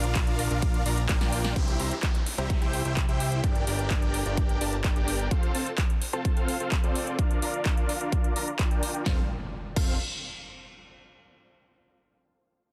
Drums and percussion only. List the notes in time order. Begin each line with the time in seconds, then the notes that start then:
0.04 closed hi-hat
0.15 kick, clap, closed hi-hat, ride
0.27 closed hi-hat
0.39 open hi-hat
0.51 closed hi-hat
0.62 kick, closed hi-hat, ride
0.74 closed hi-hat
0.86 open hi-hat
0.98 closed hi-hat
1.09 kick, snare, clap, closed hi-hat, ride
1.21 snare, closed hi-hat
1.33 open hi-hat
1.44 snare
1.56 kick, closed hi-hat
1.68 closed hi-hat
1.80 open hi-hat
1.91 closed hi-hat
2.03 kick, clap, closed hi-hat
2.15 closed hi-hat
2.26 open hi-hat
2.38 closed hi-hat
2.50 kick, closed hi-hat
2.62 closed hi-hat
2.73 open hi-hat
2.85 closed hi-hat
2.97 kick, clap, closed hi-hat
3.09 closed hi-hat
3.20 open hi-hat
3.32 closed hi-hat
3.44 kick, closed hi-hat
3.56 closed hi-hat
3.67 open hi-hat
3.79 closed hi-hat
3.91 kick, clap, closed hi-hat
4.02 closed hi-hat
4.14 open hi-hat
4.26 closed hi-hat
4.37 kick, closed hi-hat
4.49 closed hi-hat
4.61 open hi-hat
4.73 closed hi-hat
4.84 kick, clap, closed hi-hat
4.96 closed hi-hat
5.08 open hi-hat
5.20 closed hi-hat
5.31 kick, closed hi-hat
5.43 closed hi-hat
5.55 open hi-hat
5.66 closed hi-hat
5.78 kick, clap, closed hi-hat
5.90 closed hi-hat
6.02 open hi-hat
6.13 closed hi-hat
6.25 kick, closed hi-hat
6.37 closed hi-hat
6.48 open hi-hat
6.60 closed hi-hat
6.72 kick, clap, closed hi-hat
6.84 closed hi-hat
6.95 open hi-hat
7.07 closed hi-hat
7.19 kick, closed hi-hat
7.31 closed hi-hat
7.42 open hi-hat
7.54 closed hi-hat
7.66 kick, clap, closed hi-hat
7.77 closed hi-hat
7.89 open hi-hat
8.01 closed hi-hat
8.12 kick, closed hi-hat
8.24 closed hi-hat
8.36 open hi-hat
8.48 closed hi-hat
8.59 kick, clap, closed hi-hat
8.71 closed hi-hat
8.83 open hi-hat
8.94 closed hi-hat
9.06 kick, snare
9.76 kick, crash